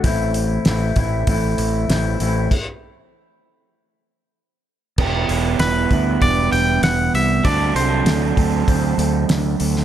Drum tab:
CC |----------------|x---------------|x---------------|----------------|
HH |o-o-o-o-o-o-o-o-|----------------|--o-o-o-o-o-o-o-|o-o-o-o-o-o-o-o-|
SD |----o-------o---|----------------|----o-------o---|----o-------o--o|
BD |o-----o-o-------|o---------------|o-----o-o-------|o-----o-o-------|